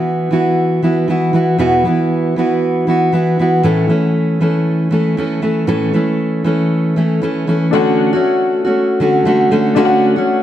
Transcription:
Already playing: steel-string acoustic guitar E3 B3 E4 F#4
0.31 steel-string acoustic guitar E3 B3 E4 F#4
0.82 steel-string acoustic guitar E3 B3 E4 F#4
1.08 steel-string acoustic guitar E3 B3 E4 F#4
1.33 steel-string acoustic guitar E3 B3 E4 F#4
1.58 steel-string acoustic guitar E2 B2 E3 B3 E4 F#4
1.85 steel-string acoustic guitar E3 B3 E4 F#4
2.36 steel-string acoustic guitar E3 B3 E4 F#4
2.87 steel-string acoustic guitar E3 B3 E4 F#4
3.12 steel-string acoustic guitar E3 B3 E4 F#4
3.39 steel-string acoustic guitar E3 B3 E4 F#4
3.63 steel-string acoustic guitar A2 E3 A3 C#4 A4
3.88 steel-string acoustic guitar E3 A3 C#4 A4
4.41 steel-string acoustic guitar E3 A3 C#4 A4
4.91 steel-string acoustic guitar E3 A3 C#4 A4
5.17 steel-string acoustic guitar E3 A3 C#4 A4
5.42 steel-string acoustic guitar E3 A3 C#4 A4
5.67 steel-string acoustic guitar A2 E3 A3 C#4 A4
5.93 steel-string acoustic guitar E3 A3 C#4 A4
6.44 steel-string acoustic guitar E3 A3 C#4 A4
6.96 steel-string acoustic guitar E3 A3 C#4 A4
7.22 steel-string acoustic guitar E3 A3 C#4 A4
7.47 steel-string acoustic guitar E3 A3 C#4 A4
7.71 steel-string acoustic guitar D3 A3 C#4 F#4, upright piano D4 A4 C#5
7.75 upright piano F#5
8.13 steel-string acoustic guitar A3 C#4 F#4
8.64 steel-string acoustic guitar A3 C#4 F#4
9.00 steel-string acoustic guitar D3 A3 C#4 F#4
9.25 steel-string acoustic guitar D3 A3 C#4 F#4
9.51 steel-string acoustic guitar D3 A3 C#4 F#4
9.75 steel-string acoustic guitar D3 A3 C#4 F#4, upright piano D4 A4 C#5
9.79 upright piano F5
9.85 upright piano F#5
10.16 steel-string acoustic guitar A3 C#4 F#4

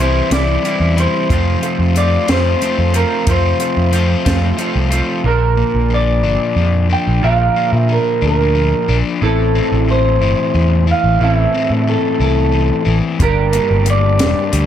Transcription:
Already playing: picked electric bass C2
0.00 overdriven electric guitar E3 G3 C4 E4, clean electric guitar C5
0.31 picked electric bass C2, overdriven electric guitar E3 G3 C4 E4, clean electric guitar D5, snare, closed hi-hat
0.63 overdriven electric guitar E3 G3 C4 E4, closed hi-hat
0.80 picked electric bass E2
0.96 overdriven electric guitar E3 G3 C4 E4, closed hi-hat
1.00 clean electric guitar C5
1.29 overdriven electric guitar F2 C3 F3 A3 C4 F4, picked electric bass F2, kick, closed hi-hat
1.61 overdriven electric guitar F3 A3 C4 F4, closed hi-hat
1.79 picked electric bass F2
1.94 overdriven electric guitar F3 A3 C4 F4, clean electric guitar D5, closed hi-hat
2.27 picked electric bass F2, overdriven electric guitar F3 A3 C4 F4, clean electric guitar C5, snare, closed hi-hat
2.61 overdriven electric guitar F3 A3 C4 F4, closed hi-hat
2.79 picked electric bass F2
2.93 overdriven electric guitar F3 A3 C4 F4, clean electric guitar A#4, closed hi-hat
3.27 overdriven electric guitar F2 C3 F3 A3 C4 F4, picked electric bass F2, clean electric guitar C5, kick, closed hi-hat
3.59 overdriven electric guitar F3 A3 C4 F4, closed hi-hat
3.77 picked electric bass F2
3.91 overdriven electric guitar F3 A3 C4 F4, closed hi-hat
4.25 picked electric bass F2, overdriven electric guitar F3 A3 C4 F4, kick, snare, closed hi-hat
4.57 overdriven electric guitar F3 A3 C4 F4, closed hi-hat
4.76 picked electric bass C2
4.90 overdriven electric guitar F3 A3 C4 F4, closed hi-hat
5.24 picked electric bass A#1, overdriven electric guitar A#2 D3 F3 A#3 D4, clean electric guitar A#4
5.28 overdriven electric guitar A#4
5.57 overdriven electric guitar A#3
5.74 picked electric bass A#1
5.90 overdriven electric guitar F3
5.94 clean electric guitar D5
6.23 picked electric bass G1, overdriven electric guitar D4
6.56 picked electric bass F2, overdriven electric guitar F3
6.90 overdriven electric guitar D4, clean electric guitar G5
7.08 picked electric bass A#1
7.21 picked electric bass A#1, overdriven electric guitar A#2 D3 F3 A#3 D4 A#4, clean electric guitar F5
7.56 overdriven electric guitar A#3
7.72 picked electric bass A#2, clean electric guitar E5
7.89 overdriven electric guitar F3, clean electric guitar A#4
8.22 picked electric bass D2, overdriven electric guitar D4
8.26 clean electric guitar A#4
8.55 overdriven electric guitar F3
8.88 picked electric bass A#1, overdriven electric guitar D4
9.21 picked electric bass A1, overdriven electric guitar A2 E3 C4 E4 A4, clean electric guitar A4
9.55 overdriven electric guitar C4
9.72 picked electric bass A1
9.88 overdriven electric guitar E3, clean electric guitar C5
10.21 picked electric bass G1, overdriven electric guitar E4
10.54 picked electric bass E2, overdriven electric guitar E3
10.87 overdriven electric guitar E4
10.91 clean electric guitar F5
11.04 picked electric bass A1
11.20 picked electric bass A1, overdriven electric guitar A2 E3 C4 E4 A4, clean electric guitar F5
11.33 clean electric guitar E5
11.54 overdriven electric guitar C4
11.70 picked electric bass A2
11.87 overdriven electric guitar E3, clean electric guitar A4
12.20 picked electric bass C2, overdriven electric guitar E4, clean electric guitar A4
12.52 overdriven electric guitar E3
12.85 picked electric bass A1, overdriven electric guitar E4
13.19 picked electric bass G1, overdriven electric guitar G2 D3 G3 A#3 D4, analog synth pad G4 D5, clean electric guitar A#4, kick, closed hi-hat
13.23 overdriven electric guitar G4
13.53 overdriven electric guitar A#3, closed hi-hat
13.71 picked electric bass G1
13.86 overdriven electric guitar G3, closed hi-hat
13.90 clean electric guitar D5
14.19 picked electric bass E1, overdriven electric guitar D4, snare, closed hi-hat
14.53 picked electric bass D2, overdriven electric guitar G3, closed hi-hat

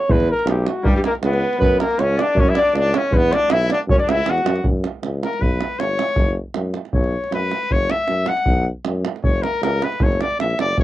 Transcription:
Already playing: flugelhorn C#5
0.09 tuba E2, flugelhorn B4, davul low
0.20 davul high
0.31 flugelhorn A#4
0.39 davul high
0.45 tuba B1, davul high
0.49 flugelhorn G4
0.67 flugelhorn F#4, davul high
0.82 tuba G2, trumpet G3 A#3, flugelhorn A#4, davul low
0.87 flugelhorn G4
0.96 trumpet G3, flugelhorn G4, davul high
1.04 trumpet A#3, flugelhorn A#4, davul high
1.15 davul high
1.23 tuba C#2, trumpet B3, flugelhorn B4, davul high
1.34 davul high
1.53 davul high
1.59 tuba F#2, trumpet B3, flugelhorn B4, davul low
1.80 trumpet A#3, flugelhorn A#4, davul high
1.91 davul high
1.98 tuba C#2, trumpet C#4, flugelhorn C#5, davul high
2.17 trumpet D4, flugelhorn D5, davul high
2.35 tuba F#2, davul low
2.39 trumpet C#4, flugelhorn C#5
2.48 trumpet E4, flugelhorn E5, davul high
2.55 flugelhorn D5, davul high
2.61 trumpet D4
2.67 davul high
2.73 tuba C#2, flugelhorn D5, davul high
2.79 trumpet D4
2.94 trumpet C#4, flugelhorn C#5, davul high
3.11 tuba E2, flugelhorn B4, davul low
3.17 trumpet B3
3.22 davul high
3.32 trumpet D4, flugelhorn D5, davul high
3.43 davul high
3.49 tuba B1, trumpet E4, flugelhorn E5, davul high
3.70 trumpet D4, flugelhorn D5, davul high
3.88 tuba F#2, flugelhorn C#5, davul low
3.92 trumpet C#4
3.99 trumpet D4, flugelhorn D5, davul high
4.06 tuba C#2, flugelhorn E5, davul high
4.11 trumpet E4
4.18 davul high
4.26 tuba E2, flugelhorn F#5, davul high
4.30 trumpet F#4
4.38 davul high
4.45 tuba F#2, davul high
4.56 davul high
4.64 tuba F#2, davul low
4.84 davul high
5.03 tuba C#2, davul high
5.23 trumpet A#4, davul high
5.33 davul high
5.40 tuba B1, trumpet B4, davul low
5.61 davul high
5.78 tuba G1, trumpet C#5, davul high
5.99 davul high
6.09 davul high
6.16 tuba F#1, davul low
6.54 tuba F#2, davul high
6.74 davul high
6.85 davul high
6.93 tuba B1, trumpet C#5, davul low
7.04 davul high
7.24 davul high
7.31 tuba F#2, trumpet B4, davul high
7.51 davul high
7.63 davul high
7.70 tuba F#1, trumpet C#5, davul low
7.90 trumpet E5, davul high
8.08 tuba F#2, davul high
8.26 trumpet F#5, davul high
8.37 davul high
8.46 tuba B1, davul low
8.85 tuba F#2, davul high
9.05 davul high
9.16 davul high
9.23 tuba F#1, trumpet C#5, davul low
9.43 trumpet A#4, davul high
9.61 tuba C#2, trumpet A#4, davul high
9.82 trumpet B4, davul high
9.92 davul high
10.00 tuba F#1, trumpet C#5, davul low
10.12 davul high
10.21 trumpet D5, davul high
10.31 davul high
10.39 tuba A#1, trumpet E5, davul high
10.50 davul high
10.58 tuba F#1, trumpet D5, davul high
10.69 davul high
10.77 tuba F#1, trumpet C#5, davul low

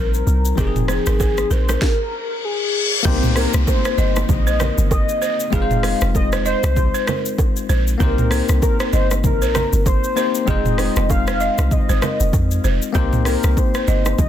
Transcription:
Already playing: log drum bass A#1, tine electric piano G3 C4 D#4 A#4, balafon A#4, soft synth lead A#4
0.14 shaker
0.27 log drum bass C2, shaker
0.45 shaker
0.55 log drum bass F1, tine electric piano F3 C4 D#4, soft synth lead G#4, balafon A#4, kick, low conga, shaker
0.60 tine electric piano G4
0.67 tine electric piano G#4
0.76 mid tom, shaker
0.88 balafon C5, cross-stick, low bongo, shaker
1.06 log drum bass G#1, balafon A#4, cross-stick, shaker
1.20 soft synth lead G#4, balafon C5, kick, high bongo, shaker
1.38 cross-stick, shaker
1.51 log drum bass A#1, balafon A#4, soft synth lead C5, shaker
1.69 balafon A#4, cross-stick, high bongo, low bongo, shaker
1.82 soft synth lead A#4, kick, snare, reverse cymbal
2.45 soft synth lead G#4
3.03 log drum bass C2, tine electric piano A#3 C4 D#4 G4, balafon A#4, kick, crash, downlifter, low conga, shaker
3.08 tine electric piano C5
3.23 mid tom, shaker
3.36 soft synth lead A#4, balafon C5, cross-stick, open hi-hat, high bongo, shaker
3.54 log drum bass C2, cross-stick, shaker
3.67 soft synth lead C5, kick, high bongo, shaker
3.85 balafon C5, cross-stick, shaker
3.98 log drum bass G1, balafon D#5, shaker
4.16 cross-stick, low bongo, shaker
4.29 log drum bass A#1, soft synth lead D#5, kick, low conga, shaker
4.47 balafon C5, shaker
4.60 balafon A#4, cross-stick, low bongo, low conga, shaker
4.78 log drum bass G1, shaker
4.91 soft synth lead D#5, kick, high bongo, shaker
5.09 shaker
5.22 balafon C5, shaker
5.40 shaker
5.50 log drum bass F1, tine electric piano G#3 C4 D#4 F4, balafon G#4, soft synth lead F5, kick, low conga, shaker
5.55 tine electric piano B4
5.62 tine electric piano C5
5.71 mid tom, shaker
5.83 balafon C5, cross-stick, open hi-hat, high bongo, shaker
6.01 log drum bass F1, cross-stick, shaker
6.15 soft synth lead D#5, kick, high bongo, shaker
6.32 balafon C5, cross-stick, shaker
6.46 soft synth lead C5, balafon D#5, shaker
6.63 log drum bass C2, cross-stick, low bongo, shaker
6.77 kick, low conga, shaker
6.94 balafon C5, shaker
7.07 balafon A#4, cross-stick, low bongo, low conga, shaker
7.26 shaker
7.38 kick, high bongo, shaker
7.56 shaker
7.69 log drum bass A#1, balafon C5, shaker
7.87 shaker
7.98 log drum bass C2, tine electric piano A#3 C4 D#4 G4, balafon A#4, soft synth lead A#4, kick, low conga, shaker
8.03 tine electric piano C5
8.18 mid tom, shaker
8.31 balafon C5, cross-stick, open hi-hat, high bongo, shaker
8.49 log drum bass C2, cross-stick, shaker
8.62 soft synth lead A#4, kick, high bongo, shaker
8.80 balafon C5, cross-stick, shaker
8.93 log drum bass G1, soft synth lead C5, balafon D#5, shaker
9.11 cross-stick, low bongo, shaker
9.24 log drum bass A#1, soft synth lead A#4, kick, low conga, shaker
9.42 balafon C5, shaker
9.55 balafon A#4, cross-stick, low bongo, low conga, shaker
9.73 log drum bass G1, shaker
9.86 soft synth lead C5, kick, high bongo, shaker
10.04 shaker
10.16 tine electric piano A#3 C4 D#4 G4 C5, balafon C5, shaker
10.35 shaker
10.46 log drum bass F1, tine electric piano G#3 C4 D#4 F4, balafon G#4, soft synth lead D#5, kick, low conga, shaker
10.50 tine electric piano C5
10.66 mid tom, shaker
10.78 balafon C5, cross-stick, open hi-hat, high bongo, low bongo, shaker
10.96 log drum bass F1, cross-stick, low bongo, shaker
11.10 soft synth lead F5, kick, high bongo, shaker
11.27 balafon C5, cross-stick, shaker
11.40 balafon D#5, shaker
11.58 log drum bass C2, cross-stick, high bongo, low bongo, shaker
11.71 soft synth lead D#5, kick, low conga, shaker
11.89 log drum bass G#1, balafon C5, shaker
12.02 balafon A#4, cross-stick, low bongo, low conga, shaker
12.20 log drum bass F1, shaker
12.33 log drum bass F2, kick, high bongo, shaker
12.51 shaker
12.64 log drum bass F1, balafon C5, shaker
12.82 shaker
12.93 log drum bass C2, tine electric piano A#3 C4 D#4 G4, balafon A#4, kick, low conga, shaker
12.98 tine electric piano C5
13.13 mid tom, shaker
13.25 soft synth lead A#4, balafon C5, cross-stick, open hi-hat, high bongo, shaker
13.43 log drum bass C2, cross-stick, shaker
13.57 soft synth lead C5, kick, high bongo, shaker
13.74 balafon C5, cross-stick, shaker
13.88 log drum bass G1, balafon D#5, shaker
14.06 cross-stick, low bongo, shaker
14.19 log drum bass A#1, soft synth lead D#5, kick, low conga, shaker

